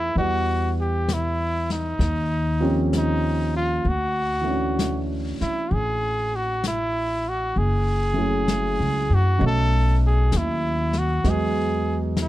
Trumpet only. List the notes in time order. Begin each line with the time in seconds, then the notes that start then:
Already playing: E4
0.18 F#4
0.81 G4
1.13 E4
1.73 D#4
2.98 D#4
3.57 F4
3.89 F#4
5.42 E4
5.74 G#4
6.36 F#4
6.68 E4
7.29 F#4
7.58 G#4
9.15 F#4
9.47 A4
10.07 G#4
10.38 E4
10.98 F#4
11.30 G#4
12.22 E4